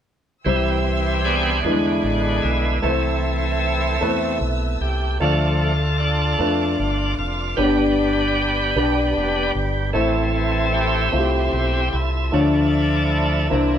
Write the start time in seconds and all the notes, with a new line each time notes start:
0.45 C2 C3 E3 G3 C4 E4 G4 C5 E5 G5 C6 E6
1.24 B3 D4 G#4
1.62 E2 D3 E3 G3 G#3 B3 D4 E4 G#5 B5 D6
1.66 B4
1.71 G#3
2.04 A1
2.42 B1 E4
2.80 C2 C3 E3 A3 C4 E4 E5 A5 E6
2.84 E4 B4
2.90 C5
4.01 E2 A3 B3 E4 B4
4.08 C4
4.41 B1
4.81 C2 G4
5.19 D2 D3 F3 A3 D4 F4 D5 F5 A5 D6
5.24 A4
6.00 D4 F4 A4
6.39 F2 A3 D4 F4 B4
6.79 G1
7.18 F1 F4
7.57 G1 G2 G3 B3 D4 G4 C#5 G5 B5
7.65 D5
8.76 B1 B3 D4 G4 D5
9.16 F1
9.55 G1
9.93 A1 A2 E3 A3 C4 E4 C5 E5 A5 C6
10.74 C4 E4 G4
11.12 C2 A3 C4 E4 F4
11.19 G4
11.53 B1
11.93 C2 E4
12.32 D2 D3 F3 A3 D4 E4 F4 C#5 D5 D6
12.40 D5
13.50 C2 C3 E3 A#3 D4 E4 C5 E5 A#5 C6